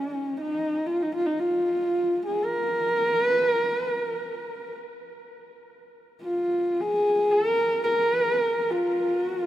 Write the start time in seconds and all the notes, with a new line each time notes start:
Already playing: C#4
0.41 D#4
0.86 F4
1.02 D#4
1.15 F4
1.26 D#4
1.39 F4
2.26 G#4
2.43 A#4
3.26 B4
3.48 A#4
3.72 B4
3.95 A#4
6.23 F4
6.81 G#4
7.31 A#4
7.84 A#4
8.71 F4
9.25 F#4
9.39 F4